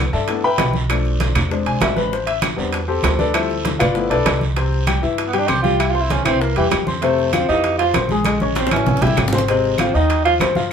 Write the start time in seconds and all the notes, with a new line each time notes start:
0.13 G2 A4 D5 E5 A5, short guiro
0.28 A3 B3 D4 E4, high bongo, high conga, high timbale, long guiro
0.43 B4 E5 G5 B5, high conga
0.58 B1, high bongo, low bongo, high conga, high timbale, low timbale, short guiro, claves
0.73 high conga, short guiro
0.89 F3 A3 D4, high bongo, high conga, high timbale, long guiro, claves
1.05 high bongo, high conga
1.20 high bongo, high conga, high timbale, low timbale, short guiro
1.35 E2, high conga, low conga, high timbale, short guiro, claves
1.50 G#3 C4 D4, high bongo, high conga, long guiro
1.65 B1 G#5, high bongo, high conga, high timbale
1.81 A1 E5, high bongo, low bongo, high conga, high timbale, low timbale, short guiro, claves
1.96 B4, high bongo, high conga, short guiro
2.12 C5, high bongo, high conga, long guiro
2.27 E5, high conga, high timbale
2.42 high bongo, high conga, high timbale, low timbale, short guiro, claves
2.56 E2 G3 B3 C4 D4, short guiro
2.73 high bongo, high conga, high timbale, long guiro
2.88 C4 G4 A4 C5, high conga
3.03 D2, high bongo, low bongo, high conga, high timbale, low timbale, short guiro, claves
3.19 D4 A4 B4 D5, high conga, short guiro
3.33 F3 G3 C4 E4 A4 C5 E5, high bongo, high conga, high timbale, long guiro, claves
3.50 high bongo, high conga
3.65 high bongo, high conga, high timbale, low timbale, short guiro
3.79 G1 F4 B4 D5 F5, high conga, low conga, high timbale, short guiro, claves
3.94 F3 A3 B3 E4, high bongo, high conga, long guiro
4.10 B1 D4 A4 B4 D5, high bongo, high conga, high timbale
4.26 C2, high bongo, low bongo, high conga, high timbale, low timbale, short guiro, claves
4.41 high bongo, high conga, short guiro
4.56 C3 C4 C5, high bongo, high conga, high timbale, long guiro
4.72 high bongo, high conga
4.87 G3 G4 G5, high bongo, high conga, high timbale, short guiro, claves
5.02 G2 E3 E4 E5, high conga, short guiro
5.18 high bongo, high conga, high timbale, long guiro
5.28 B3
5.33 G3 G4 G5, high bongo, high conga, high timbale
5.39 D4
5.48 C2 C4 G4 C5 C6, high bongo, low bongo, high conga, high timbale, short guiro, claves
5.62 G3 F4 G4 G5, high bongo, high conga, short guiro
5.79 E4, high bongo, high conga, high timbale, long guiro, claves
5.89 F4
5.94 C4 C5 C6, high bongo, high conga
6.01 E4
6.10 C#4, high bongo, high conga, high timbale, short guiro
6.24 C2 E3 C4 E4 E5, high conga, low conga, high timbale, short guiro, claves
6.41 A#3, high bongo, high conga, long guiro
6.56 E2 E3 G3 G4 G5, high bongo, high conga, high timbale
6.71 F2, high bongo, low bongo, high conga, high timbale, low timbale, short guiro, claves
6.86 C4 C5 C6, high bongo, high conga, short guiro
7.02 C3 A3 C4 C5, high bongo, high conga, high timbale, long guiro
7.18 high bongo, high conga
7.33 F3 C4 F4 F5, high bongo, high conga, high timbale, short guiro, claves
7.48 F2 E3 D#4 G4 F5, high conga, short guiro
7.64 high bongo, high conga, high timbale, long guiro
7.78 F3 F4 F5, high bongo, high conga, high timbale
7.94 A#1 C4 C5 C6, high bongo, low bongo, high conga, high timbale, low timbale, short guiro, claves
8.09 G#3 G#4 G#5, high bongo, high conga, short guiro
8.25 G#3, high bongo, high conga, high timbale, long guiro, claves
8.40 C#4 C#5 C#6, high bongo, high conga
8.55 C4, high bongo, high conga, high timbale, short guiro
8.67 high bongo
8.71 A1 E3 C#4 E4 E5, high conga, high timbale, short guiro, claves
8.76 high bongo
8.86 low bongo, low conga, long guiro
8.97 low bongo
9.02 A1 G3 E4 G4 G5, low conga, high timbale
9.07 low bongo
9.17 G#1, low bongo, low conga, high timbale, short guiro, claves
9.28 low bongo
9.33 C4 C5 C6, low conga, short guiro
9.38 low bongo
9.48 C3 G#3 C4 C5, high bongo, high conga, high timbale, long guiro
9.64 high bongo, high conga
9.78 F3 C4 F4 F5, high bongo, high conga, high timbale, short guiro, claves
9.94 D#2 D#3 D#4 D#5, high conga, short guiro
10.09 high bongo, high conga, high timbale, long guiro
10.25 F3 F4 F5, high bongo, high conga, high timbale
10.40 G2 C4 C5 C6, high bongo, low bongo, high conga, high timbale, low timbale, short guiro, claves
10.55 F3 F4 F5, high bongo, high conga, short guiro